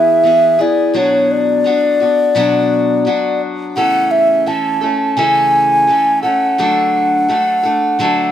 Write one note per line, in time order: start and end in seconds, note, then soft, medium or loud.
0.00 0.22 E3 medium
0.00 0.24 B3 medium
0.00 0.25 E4 medium
0.00 0.25 G#4 medium
0.00 0.63 E5 medium
0.24 0.60 E3 soft
0.24 0.60 B3 soft
0.24 0.59 E4 medium
0.24 0.58 G#4 soft
0.59 0.93 B3 soft
0.59 0.95 E4 soft
0.59 0.95 G#4 soft
0.59 0.98 D5 medium
0.94 1.65 B2 medium
0.94 1.63 F#3 medium
0.94 1.64 B3 medium
0.94 1.65 D4 medium
0.94 1.66 F#4 medium
0.94 1.33 C#5 medium
1.31 3.42 D5 medium
1.64 2.00 F#3 medium
1.64 2.01 B3 medium
1.64 2.00 D4 medium
1.64 1.99 F#4 medium
2.00 2.35 B3 soft
2.00 2.35 D4 soft
2.00 2.35 F#4 soft
2.35 3.06 B2 medium
2.35 3.04 F#3 medium
2.35 3.05 B3 medium
2.35 3.06 D4 medium
2.35 3.06 F#4 medium
3.05 3.76 F#3 soft
3.05 3.76 B3 medium
3.05 3.77 D4 medium
3.05 3.77 F#4 medium
3.76 4.47 C#3 medium
3.76 4.45 E3 medium
3.76 4.47 A3 medium
3.76 4.47 C#4 medium
3.76 4.49 A4 medium
3.76 4.13 F#5 medium
4.11 4.49 E5 medium
4.46 4.82 E3 medium
4.46 4.82 A3 medium
4.46 4.81 C#4 soft
4.46 4.80 A4 medium
4.46 5.19 A5 medium
4.81 5.17 A3 soft
4.81 5.17 C#4 soft
4.81 5.17 A4 medium
5.17 5.88 C#3 medium
5.17 5.86 E3 medium
5.17 5.87 A3 medium
5.17 5.88 C#4 medium
5.17 5.89 A4 medium
5.17 6.22 G#5 medium
5.87 6.23 E3 soft
5.87 6.23 A3 medium
5.87 6.23 C#4 soft
5.87 6.21 A4 medium
6.23 6.58 A3 soft
6.23 6.59 C#4 soft
6.23 6.58 A4 soft
6.23 8.32 F#5 medium
6.58 7.29 D3 medium
6.58 7.27 F#3 medium
6.58 7.28 A3 medium
6.58 7.29 D4 medium
6.58 7.30 A4 medium
7.28 7.64 F#3 medium
7.28 7.64 A3 medium
7.28 7.64 D4 medium
7.28 7.62 A4 medium
7.63 7.99 A3 soft
7.63 7.99 D4 soft
7.63 7.99 A4 medium
7.99 8.32 D3 medium
7.99 8.32 F#3 medium
7.99 8.32 A3 medium
7.99 8.32 D4 medium
7.99 8.32 A4 medium